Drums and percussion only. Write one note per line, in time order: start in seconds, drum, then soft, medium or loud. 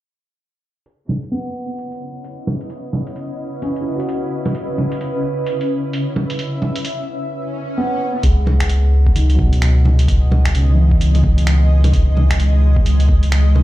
0.86 closed hi-hat medium
1.09 low bongo soft
1.23 closed hi-hat soft
1.33 closed hi-hat medium
1.79 closed hi-hat soft
1.92 closed hi-hat soft
2.24 closed hi-hat medium
2.47 low bongo soft
2.61 closed hi-hat soft
2.70 closed hi-hat medium
2.93 low bongo soft
3.07 closed hi-hat medium
3.16 closed hi-hat medium
3.62 closed hi-hat soft
3.76 closed hi-hat soft
4.00 closed hi-hat soft
4.09 closed hi-hat medium
4.46 closed hi-hat medium
4.46 low bongo medium
4.55 closed hi-hat medium
4.78 low bongo soft
4.92 closed hi-hat medium
5.01 closed hi-hat medium
5.47 closed hi-hat medium
5.61 closed hi-hat soft
5.93 closed hi-hat medium
6.16 low bongo soft
6.30 closed hi-hat medium
6.39 closed hi-hat medium
6.62 low bongo soft
6.76 closed hi-hat soft
6.85 closed hi-hat medium
8.23 kick loud
8.23 closed hi-hat medium
8.47 low bongo soft
8.60 finger snap loud
8.60 kick medium
8.60 closed hi-hat medium
8.70 closed hi-hat medium
9.07 kick loud
9.16 closed hi-hat medium
9.30 closed hi-hat soft
9.39 kick loud
9.53 closed hi-hat soft
9.62 finger snap loud
9.62 closed hi-hat medium
9.85 low bongo medium
9.99 closed hi-hat medium
10.08 kick loud
10.08 closed hi-hat medium
10.32 low bongo soft
10.45 finger snap loud
10.45 kick medium
10.45 closed hi-hat medium
10.55 closed hi-hat medium
10.91 kick loud
11.01 closed hi-hat medium
11.15 closed hi-hat soft
11.15 low bongo soft
11.24 kick loud
11.38 closed hi-hat soft
11.47 finger snap loud
11.47 closed hi-hat medium
11.84 closed hi-hat medium
11.84 low bongo medium
11.93 kick loud
11.93 closed hi-hat medium
12.17 low bongo soft
12.30 finger snap loud
12.30 kick medium
12.30 closed hi-hat medium
12.40 closed hi-hat medium
12.76 kick loud
12.86 closed hi-hat medium
13.00 closed hi-hat soft
13.09 kick loud
13.23 closed hi-hat soft
13.32 finger snap loud
13.32 closed hi-hat medium
13.55 low bongo soft